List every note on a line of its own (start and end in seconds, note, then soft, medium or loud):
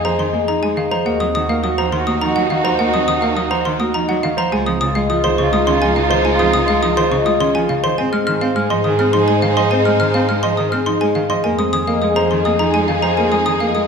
0.00 0.90 F2 medium
0.00 0.88 D#4 medium
0.00 0.33 G#4 medium
0.00 0.88 G#4 medium
0.00 0.22 G#4 medium
0.00 0.47 C5 medium
0.00 0.18 D#5 medium
0.00 1.21 F5 medium
0.00 1.08 G#5 medium
0.05 0.15 F3 medium
0.05 0.24 C5 medium
0.05 0.24 A#5 medium
0.19 0.30 D#3 medium
0.19 0.76 D#5 medium
0.19 0.38 C6 medium
0.31 0.45 A#3 medium
0.31 0.52 G#4 medium
0.31 0.53 G#4 medium
0.31 0.91 G#4 medium
0.48 0.59 F3 medium
0.48 0.67 D#4 medium
0.48 1.08 C5 medium
0.48 0.67 A#5 medium
0.61 0.73 G#3 medium
0.61 0.82 G#4 soft
0.61 0.81 G#4 medium
0.61 0.81 G#5 medium
0.76 0.88 D#3 medium
0.76 1.05 D#5 medium
0.76 0.96 F5 medium
0.91 1.02 F3 medium
0.91 1.08 G#4 medium
0.91 1.10 C5 loud
0.91 1.10 A#5 medium
1.05 4.36 D#2 medium
1.05 1.16 A#3 medium
1.05 4.34 D#4 medium
1.05 1.27 F#4 soft
1.05 4.34 F#4 medium
1.05 1.25 A#4 medium
1.05 2.20 D#5 medium
1.05 1.25 F#5 medium
1.20 1.31 F#3 medium
1.20 1.39 C4 medium
1.20 1.34 D#6 medium
1.34 1.45 D#3 medium
1.34 1.57 F#4 medium
1.34 3.06 A#5 medium
1.34 1.54 D#6 medium
1.49 1.60 A#3 medium
1.49 1.68 A#4 medium
1.49 1.91 F5 medium
1.49 1.68 F5 medium
1.63 1.74 F#3 medium
1.63 1.82 F#4 medium
1.63 1.87 F#4 medium
1.63 2.06 A#4 medium
1.63 1.82 D#6 medium
1.77 1.88 F3 medium
1.77 1.97 C5 loud
1.77 1.97 A#5 medium
1.92 2.03 D#3 loud
1.92 2.49 F5 loud
1.92 2.11 C6 medium
1.96 2.17 F#4 medium
2.07 2.18 A#3 medium
2.07 2.26 F#4 medium
2.07 2.63 A#4 medium
2.07 2.26 D#6 medium
2.21 2.32 F3 medium
2.21 2.40 D#4 loud
2.21 2.78 D#5 medium
2.21 2.40 A#5 loud
2.26 2.47 F#4 medium
2.35 2.47 F#3 medium
2.35 2.54 F#4 medium
2.35 2.54 F#5 medium
2.50 2.61 D#3 medium
2.50 3.21 F5 medium
2.50 2.69 F5 medium
2.57 2.78 F#4 medium
2.64 2.75 F3 medium
2.64 3.35 A#4 medium
2.64 2.83 C5 loud
2.64 2.83 A#5 loud
2.79 2.90 A#3 loud
2.79 2.98 A#4 medium
2.79 3.94 D#5 medium
2.79 2.98 F#5 medium
2.87 3.08 F#4 loud
2.93 3.04 F#3 medium
2.93 3.12 C4 medium
2.93 3.07 D#6 medium
3.08 3.19 D#3 medium
3.08 4.54 A#5 medium
3.08 3.27 D#6 loud
3.17 3.38 F#4 medium
3.22 3.33 A#3 medium
3.22 3.41 A#4 medium
3.22 3.64 F5 medium
3.22 3.41 F5 medium
3.36 3.47 F#3 medium
3.36 3.55 F#4 medium
3.36 3.79 A#4 medium
3.36 3.55 D#6 medium
3.47 3.62 F3 medium
3.47 3.68 F#4 medium
3.47 3.70 C5 loud
3.47 3.70 A#5 loud
3.65 3.76 D#3 loud
3.65 4.22 F5 loud
3.65 3.84 C6 medium
3.77 3.91 A#3 medium
3.77 3.98 F#4 medium
3.77 3.99 F#4 medium
3.77 4.36 A#4 medium
3.77 3.99 D#6 medium
3.94 4.05 F3 medium
3.94 4.13 D#4 loud
3.94 4.94 D#5 medium
3.94 4.13 A#5 medium
4.07 4.19 F#3 loud
4.07 4.28 F#4 soft
4.07 4.27 F#4 medium
4.07 4.28 F#5 medium
4.23 4.34 D#3 medium
4.23 4.42 F5 medium
4.23 8.01 F5 medium
4.37 4.48 F3 medium
4.37 4.54 A#4 medium
4.37 4.56 C5 loud
4.37 4.56 A#5 loud
4.52 7.83 C#2 medium
4.52 4.63 G#3 loud
4.52 7.80 D#4 medium
4.52 7.80 F4 medium
4.52 4.73 F4 medium
4.52 4.71 G#4 medium
4.52 5.66 C#5 loud
4.52 4.71 G#5 medium
4.66 4.77 F3 medium
4.66 4.85 C4 medium
4.66 4.80 D#6 medium
4.81 4.92 C#3 medium
4.81 5.03 F4 medium
4.81 6.53 G#5 medium
4.81 5.00 D#6 loud
4.95 5.06 G#3 medium
4.95 5.14 G#4 medium
4.95 5.37 D#5 loud
4.95 5.14 F5 medium
5.10 5.20 F3 medium
5.10 5.28 F4 medium
5.10 5.33 F4 medium
5.10 5.52 G#4 medium
5.10 5.29 D#6 medium
5.24 5.35 D#3 medium
5.24 5.43 C5 loud
5.24 5.43 C6 loud
5.38 5.49 C#3 loud
5.38 5.63 F4 medium
5.38 5.95 D#5 loud
5.38 5.57 C#6 medium
5.53 5.64 G#3 medium
5.53 5.72 F4 medium
5.53 6.10 G#4 medium
5.53 5.72 D#6 medium
5.67 5.78 D#3 medium
5.67 5.86 C#4 loud
5.67 6.24 C#5 medium
5.67 5.86 C6 loud
5.72 5.93 F4 loud
5.81 5.93 F3 loud
5.81 6.00 F4 medium
5.81 6.01 G#5 loud
5.96 6.07 C#3 medium
5.96 6.67 D#5 medium
5.96 6.15 F5 medium
6.02 6.24 F4 medium
6.10 6.22 D#3 medium
6.10 6.82 G#4 medium
6.10 6.29 C5 loud
6.10 6.29 C6 loud
6.25 6.36 G#3 loud
6.25 6.44 G#4 medium
6.25 7.40 C#5 loud
6.25 6.44 G#5 medium
6.33 6.54 F4 loud
6.39 6.50 F3 medium
6.39 6.58 C4 medium
6.39 6.52 D#6 medium
6.54 6.65 C#3 medium
6.54 10.44 G#5 medium
6.54 6.73 D#6 loud
6.63 6.84 F4 medium
6.68 6.79 G#3 loud
6.68 6.87 G#4 medium
6.68 7.10 D#5 medium
6.68 6.87 F5 medium
6.83 6.94 F3 medium
6.83 7.02 F4 medium
6.83 7.25 G#4 medium
6.83 7.01 D#6 medium
6.93 7.08 D#3 medium
6.93 7.14 F4 medium
6.93 7.16 C5 loud
6.93 7.16 C6 loud
7.11 7.22 C#3 loud
7.11 7.68 D#5 loud
7.11 7.30 C#6 medium
7.24 7.37 G#3 medium
7.24 7.45 F4 medium
7.24 7.82 G#4 medium
7.24 7.45 D#6 medium
7.40 7.51 D#3 medium
7.40 7.59 C#4 loud
7.40 8.01 C#5 medium
7.40 7.59 C6 loud
7.54 7.65 F3 loud
7.54 7.75 F4 medium
7.54 7.74 F4 medium
7.54 7.74 G#5 medium
7.69 7.80 C#3 medium
7.69 7.97 D#5 medium
7.69 7.88 F5 medium
7.83 7.95 D#3 medium
7.83 8.54 G#4 medium
7.83 7.97 C5 loud
7.83 8.02 C6 loud
7.98 11.29 G#2 medium
7.98 8.09 C4 loud
7.98 11.26 D#4 medium
7.98 8.19 G#4 medium
7.98 8.17 C5 medium
7.98 11.26 C5 medium
7.98 9.12 D#5 medium
7.98 8.17 G#5 medium
8.12 8.23 G#3 medium
8.12 8.31 C4 medium
8.12 8.26 F6 medium
8.27 8.38 D#3 medium
8.27 8.49 G#4 medium
8.27 9.99 C6 medium
8.27 8.46 F6 loud
8.41 8.52 C4 loud
8.41 8.60 C5 medium
8.41 8.84 F5 loud
8.41 8.60 F5 medium
8.56 8.67 G#3 medium
8.56 8.98 G#4 medium
8.56 8.75 G#4 medium
8.56 8.79 G#4 medium
8.56 8.75 F6 medium
8.70 8.81 F3 medium
8.70 8.89 D#5 loud
8.70 8.89 C6 loud
8.84 8.96 D#3 loud
8.84 9.41 F5 loud
8.84 9.03 D#6 medium
8.88 9.10 G#4 medium
8.99 9.10 C4 medium
8.99 9.18 G#4 medium
8.99 9.55 G#4 medium
8.99 9.18 F6 medium
9.13 9.24 F3 medium
9.13 9.32 D#4 loud
9.13 9.70 D#5 medium
9.13 9.32 C6 loud
9.19 9.40 G#4 loud
9.28 9.39 G#3 loud
9.28 9.47 G#4 medium
9.28 9.47 G#5 medium
9.42 9.53 D#3 medium
9.42 9.61 F5 medium
9.42 10.13 F5 medium
9.49 9.70 G#4 loud
9.57 9.68 F3 medium
9.57 10.28 G#4 medium
9.57 9.76 D#5 loud
9.57 9.76 C6 loud
9.71 9.82 C4 loud
9.71 9.90 C5 medium
9.71 10.85 D#5 medium
9.71 9.90 G#5 medium
9.79 10.00 G#4 loud
9.85 9.97 G#3 medium
9.85 10.04 C4 medium
9.85 9.99 F6 medium
10.00 10.11 D#3 medium
10.00 13.87 C6 medium
10.00 10.19 F6 loud
10.09 10.30 G#4 medium
10.14 10.26 C4 medium
10.14 10.33 C5 medium
10.14 10.33 F5 medium
10.14 10.57 F5 medium
10.29 10.40 G#3 medium
10.29 10.71 G#4 medium
10.29 10.48 G#4 medium
10.29 10.48 F6 medium
10.39 10.61 G#4 medium
10.39 10.62 D#5 loud
10.39 10.62 C6 loud
10.44 10.54 F3 medium
10.57 10.69 D#3 loud
10.57 11.14 F5 loud
10.57 10.76 D#6 medium
10.69 10.83 C4 medium
10.69 10.91 G#4 medium
10.69 11.29 G#4 medium
10.69 10.91 F6 medium
10.86 10.98 F3 medium
10.86 11.05 D#4 loud
10.86 11.86 D#5 medium
10.86 11.05 C6 loud
11.00 11.12 G#3 medium
11.00 11.21 G#4 soft
11.00 11.20 G#4 medium
11.00 11.20 G#5 medium
11.15 11.26 D#3 medium
11.15 11.34 F5 medium
11.15 13.87 F5 medium
11.30 11.41 F3 medium
11.30 12.00 G#4 medium
11.30 11.49 D#5 loud
11.30 11.49 C6 loud
11.44 13.87 F2 medium
11.44 11.55 A#3 loud
11.44 13.87 D#4 medium
11.44 13.87 G#4 medium
11.44 11.65 G#4 medium
11.44 11.63 A#4 medium
11.44 12.58 C5 medium
11.44 11.63 G#5 medium
11.59 11.70 G#3 medium
11.59 11.77 C4 medium
11.59 11.72 D#6 medium
11.73 11.84 D#3 medium
11.73 11.96 G#4 medium
11.73 13.45 G#5 medium
11.73 11.92 D#6 loud
11.87 11.98 A#3 medium
11.87 12.06 A#4 medium
11.87 12.29 D#5 loud
11.87 12.06 F5 medium
12.02 12.13 G#3 medium
12.02 12.44 G#4 medium
12.02 12.21 G#4 medium
12.02 12.26 G#4 medium
12.02 12.21 D#6 medium
12.16 12.27 F3 medium
12.16 12.35 C5 loud
12.16 12.35 A#5 loud
12.30 12.42 D#3 loud
12.30 12.87 D#5 loud
12.30 12.50 C6 medium
12.35 12.56 G#4 medium
12.45 12.56 A#3 medium
12.45 13.02 G#4 medium
12.45 12.64 G#4 medium
12.45 12.64 D#6 medium
12.59 12.71 F3 medium
12.59 12.78 D#4 loud
12.59 13.16 C5 medium
12.59 12.78 A#5 loud
12.65 12.86 G#4 medium
12.74 12.85 G#3 loud
12.74 12.93 G#4 medium
12.74 12.93 G#5 medium
12.88 13.00 D#3 medium
12.88 13.59 D#5 medium
12.88 13.07 F5 medium
12.95 13.16 G#4 medium
13.02 13.14 F3 medium
13.02 13.73 G#4 medium
13.02 13.22 C5 loud
13.02 13.22 A#5 medium
13.17 13.28 A#3 medium
13.17 13.36 A#4 medium
13.17 13.87 C5 medium
13.17 13.36 G#5 medium
13.25 13.46 G#4 medium
13.32 13.43 G#3 medium
13.32 13.51 C4 medium
13.32 13.45 D#6 medium
13.46 13.57 D#3 medium
13.46 13.87 G#5 medium
13.46 13.65 D#6 medium
13.56 13.77 G#4 medium
13.60 13.72 A#3 medium
13.60 13.79 A#4 medium
13.60 13.87 D#5 medium
13.60 13.79 F5 medium
13.75 13.86 G#3 medium
13.75 13.87 G#4 medium
13.75 13.87 D#6 medium